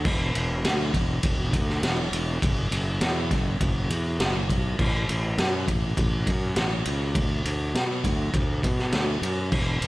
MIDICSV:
0, 0, Header, 1, 3, 480
1, 0, Start_track
1, 0, Tempo, 592300
1, 41, Time_signature, 4, 2, 24, 8
1, 7999, End_track
2, 0, Start_track
2, 0, Title_t, "Fingered electric bass"
2, 0, Program_c, 0, 33
2, 39, Note_on_c, 0, 28, 99
2, 265, Note_off_c, 0, 28, 0
2, 288, Note_on_c, 0, 28, 90
2, 509, Note_off_c, 0, 28, 0
2, 525, Note_on_c, 0, 38, 89
2, 748, Note_off_c, 0, 38, 0
2, 766, Note_on_c, 0, 28, 93
2, 988, Note_off_c, 0, 28, 0
2, 1000, Note_on_c, 0, 28, 94
2, 1225, Note_off_c, 0, 28, 0
2, 1240, Note_on_c, 0, 38, 91
2, 1465, Note_off_c, 0, 38, 0
2, 1483, Note_on_c, 0, 28, 91
2, 1707, Note_off_c, 0, 28, 0
2, 1718, Note_on_c, 0, 28, 89
2, 1944, Note_off_c, 0, 28, 0
2, 1965, Note_on_c, 0, 30, 101
2, 2188, Note_off_c, 0, 30, 0
2, 2197, Note_on_c, 0, 30, 90
2, 2424, Note_off_c, 0, 30, 0
2, 2446, Note_on_c, 0, 40, 87
2, 2668, Note_off_c, 0, 40, 0
2, 2684, Note_on_c, 0, 30, 88
2, 2907, Note_off_c, 0, 30, 0
2, 2925, Note_on_c, 0, 30, 93
2, 3148, Note_off_c, 0, 30, 0
2, 3162, Note_on_c, 0, 40, 89
2, 3386, Note_off_c, 0, 40, 0
2, 3403, Note_on_c, 0, 30, 91
2, 3627, Note_off_c, 0, 30, 0
2, 3645, Note_on_c, 0, 35, 79
2, 3868, Note_off_c, 0, 35, 0
2, 3883, Note_on_c, 0, 33, 95
2, 4106, Note_off_c, 0, 33, 0
2, 4124, Note_on_c, 0, 33, 88
2, 4347, Note_off_c, 0, 33, 0
2, 4361, Note_on_c, 0, 42, 91
2, 4585, Note_off_c, 0, 42, 0
2, 4603, Note_on_c, 0, 33, 88
2, 4827, Note_off_c, 0, 33, 0
2, 4841, Note_on_c, 0, 33, 96
2, 5065, Note_off_c, 0, 33, 0
2, 5081, Note_on_c, 0, 42, 89
2, 5305, Note_off_c, 0, 42, 0
2, 5325, Note_on_c, 0, 33, 89
2, 5547, Note_off_c, 0, 33, 0
2, 5561, Note_on_c, 0, 37, 85
2, 5785, Note_off_c, 0, 37, 0
2, 5798, Note_on_c, 0, 38, 96
2, 6023, Note_off_c, 0, 38, 0
2, 6040, Note_on_c, 0, 38, 92
2, 6264, Note_off_c, 0, 38, 0
2, 6276, Note_on_c, 0, 47, 87
2, 6502, Note_off_c, 0, 47, 0
2, 6518, Note_on_c, 0, 38, 90
2, 6743, Note_off_c, 0, 38, 0
2, 6758, Note_on_c, 0, 38, 93
2, 6983, Note_off_c, 0, 38, 0
2, 6998, Note_on_c, 0, 47, 92
2, 7222, Note_off_c, 0, 47, 0
2, 7232, Note_on_c, 0, 38, 93
2, 7459, Note_off_c, 0, 38, 0
2, 7470, Note_on_c, 0, 42, 83
2, 7698, Note_off_c, 0, 42, 0
2, 7719, Note_on_c, 0, 28, 96
2, 7942, Note_off_c, 0, 28, 0
2, 7955, Note_on_c, 0, 28, 93
2, 7999, Note_off_c, 0, 28, 0
2, 7999, End_track
3, 0, Start_track
3, 0, Title_t, "Drums"
3, 39, Note_on_c, 9, 49, 98
3, 42, Note_on_c, 9, 36, 115
3, 120, Note_off_c, 9, 49, 0
3, 123, Note_off_c, 9, 36, 0
3, 284, Note_on_c, 9, 51, 71
3, 365, Note_off_c, 9, 51, 0
3, 523, Note_on_c, 9, 51, 102
3, 526, Note_on_c, 9, 38, 111
3, 604, Note_off_c, 9, 51, 0
3, 607, Note_off_c, 9, 38, 0
3, 762, Note_on_c, 9, 36, 82
3, 762, Note_on_c, 9, 51, 73
3, 843, Note_off_c, 9, 36, 0
3, 843, Note_off_c, 9, 51, 0
3, 996, Note_on_c, 9, 51, 102
3, 1000, Note_on_c, 9, 36, 104
3, 1077, Note_off_c, 9, 51, 0
3, 1081, Note_off_c, 9, 36, 0
3, 1242, Note_on_c, 9, 51, 78
3, 1243, Note_on_c, 9, 36, 84
3, 1323, Note_off_c, 9, 51, 0
3, 1324, Note_off_c, 9, 36, 0
3, 1372, Note_on_c, 9, 38, 31
3, 1453, Note_off_c, 9, 38, 0
3, 1482, Note_on_c, 9, 51, 101
3, 1485, Note_on_c, 9, 38, 111
3, 1563, Note_off_c, 9, 51, 0
3, 1567, Note_off_c, 9, 38, 0
3, 1725, Note_on_c, 9, 51, 81
3, 1806, Note_off_c, 9, 51, 0
3, 1964, Note_on_c, 9, 36, 108
3, 1966, Note_on_c, 9, 51, 103
3, 2045, Note_off_c, 9, 36, 0
3, 2047, Note_off_c, 9, 51, 0
3, 2203, Note_on_c, 9, 51, 78
3, 2284, Note_off_c, 9, 51, 0
3, 2439, Note_on_c, 9, 51, 99
3, 2442, Note_on_c, 9, 38, 111
3, 2520, Note_off_c, 9, 51, 0
3, 2523, Note_off_c, 9, 38, 0
3, 2682, Note_on_c, 9, 36, 81
3, 2683, Note_on_c, 9, 51, 68
3, 2686, Note_on_c, 9, 38, 31
3, 2763, Note_off_c, 9, 36, 0
3, 2764, Note_off_c, 9, 51, 0
3, 2767, Note_off_c, 9, 38, 0
3, 2921, Note_on_c, 9, 51, 96
3, 2923, Note_on_c, 9, 36, 106
3, 3002, Note_off_c, 9, 51, 0
3, 3004, Note_off_c, 9, 36, 0
3, 3163, Note_on_c, 9, 51, 71
3, 3244, Note_off_c, 9, 51, 0
3, 3402, Note_on_c, 9, 51, 91
3, 3405, Note_on_c, 9, 38, 110
3, 3483, Note_off_c, 9, 51, 0
3, 3486, Note_off_c, 9, 38, 0
3, 3643, Note_on_c, 9, 36, 83
3, 3647, Note_on_c, 9, 51, 69
3, 3724, Note_off_c, 9, 36, 0
3, 3728, Note_off_c, 9, 51, 0
3, 3881, Note_on_c, 9, 49, 98
3, 3882, Note_on_c, 9, 36, 109
3, 3962, Note_off_c, 9, 49, 0
3, 3963, Note_off_c, 9, 36, 0
3, 4125, Note_on_c, 9, 51, 70
3, 4206, Note_off_c, 9, 51, 0
3, 4362, Note_on_c, 9, 51, 98
3, 4365, Note_on_c, 9, 38, 110
3, 4443, Note_off_c, 9, 51, 0
3, 4446, Note_off_c, 9, 38, 0
3, 4601, Note_on_c, 9, 36, 86
3, 4603, Note_on_c, 9, 51, 71
3, 4682, Note_off_c, 9, 36, 0
3, 4685, Note_off_c, 9, 51, 0
3, 4840, Note_on_c, 9, 36, 103
3, 4840, Note_on_c, 9, 51, 96
3, 4921, Note_off_c, 9, 36, 0
3, 4921, Note_off_c, 9, 51, 0
3, 5079, Note_on_c, 9, 36, 81
3, 5079, Note_on_c, 9, 51, 75
3, 5160, Note_off_c, 9, 36, 0
3, 5160, Note_off_c, 9, 51, 0
3, 5316, Note_on_c, 9, 51, 100
3, 5319, Note_on_c, 9, 38, 114
3, 5397, Note_off_c, 9, 51, 0
3, 5400, Note_off_c, 9, 38, 0
3, 5554, Note_on_c, 9, 51, 73
3, 5635, Note_off_c, 9, 51, 0
3, 5794, Note_on_c, 9, 51, 103
3, 5796, Note_on_c, 9, 36, 112
3, 5875, Note_off_c, 9, 51, 0
3, 5877, Note_off_c, 9, 36, 0
3, 6040, Note_on_c, 9, 51, 74
3, 6121, Note_off_c, 9, 51, 0
3, 6283, Note_on_c, 9, 51, 98
3, 6286, Note_on_c, 9, 38, 109
3, 6364, Note_off_c, 9, 51, 0
3, 6367, Note_off_c, 9, 38, 0
3, 6517, Note_on_c, 9, 36, 79
3, 6518, Note_on_c, 9, 51, 74
3, 6598, Note_off_c, 9, 36, 0
3, 6599, Note_off_c, 9, 51, 0
3, 6756, Note_on_c, 9, 36, 105
3, 6757, Note_on_c, 9, 51, 97
3, 6837, Note_off_c, 9, 36, 0
3, 6838, Note_off_c, 9, 51, 0
3, 6997, Note_on_c, 9, 36, 77
3, 7000, Note_on_c, 9, 51, 73
3, 7078, Note_off_c, 9, 36, 0
3, 7081, Note_off_c, 9, 51, 0
3, 7122, Note_on_c, 9, 38, 34
3, 7203, Note_off_c, 9, 38, 0
3, 7232, Note_on_c, 9, 51, 95
3, 7235, Note_on_c, 9, 38, 115
3, 7313, Note_off_c, 9, 51, 0
3, 7316, Note_off_c, 9, 38, 0
3, 7480, Note_on_c, 9, 51, 71
3, 7561, Note_off_c, 9, 51, 0
3, 7714, Note_on_c, 9, 49, 94
3, 7715, Note_on_c, 9, 36, 113
3, 7795, Note_off_c, 9, 49, 0
3, 7797, Note_off_c, 9, 36, 0
3, 7957, Note_on_c, 9, 51, 68
3, 7999, Note_off_c, 9, 51, 0
3, 7999, End_track
0, 0, End_of_file